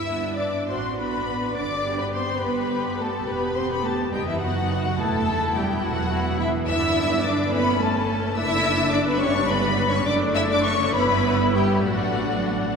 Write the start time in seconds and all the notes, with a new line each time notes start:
Already playing: G2 E4 E5 E6
0.10 B3 D4
0.38 D4 D5 D6
0.68 A1 C4 D4 F#4 C5 C6
0.98 B3 D4 F#4 B4 B5
1.56 G1 D4 D5 D6
1.85 B3 G4
2.00 B3 B4 B5
2.14 C4 C5 C6
2.43 G1 B3 B4 B5
2.71 B3 G4
3.00 A3 A4 A5
3.28 E1 B3 G4 B4 B5
3.56 B3 C4 G4 C5 C6
3.70 B3 B4 B5
3.84 A3 A4 A5
4.13 F#1 G3 B3 D#4 G4 G5
4.27 E3 E4 E5
4.41 F#3 B3 D#4 F#4 F#5
4.99 E1 A3 B3 E4 A4 A5
5.28 B3 E4
5.56 G3 G4 G5
5.84 E1 F#3 F#4 F#5
6.12 B3 E4
6.40 E3 E4 E5
6.68 G1 B3 D4 E4 E5 E6
7.25 D4 D5 D6
7.52 A3 B3 C#4 B4 B5
7.81 A3 A4 A5
8.37 F#1 D4 E4 E5 E6
8.93 D4 D5 D6
9.07 B3 B4 B5
9.21 G1 G3 C#4 C#5 C#6
9.49 B3 B4 B5
9.91 C#4 C#5 C#6
10.06 F#1 A3 D4 D5 D6
10.35 E4 E5 E6
10.50 D4 D5 D6
10.65 C#4 C#5 C#6
10.94 G1 B3 E4 B4 B5
11.55 G3 G4 G5
11.85 A1 F#3 A3 D4 F#4 F#5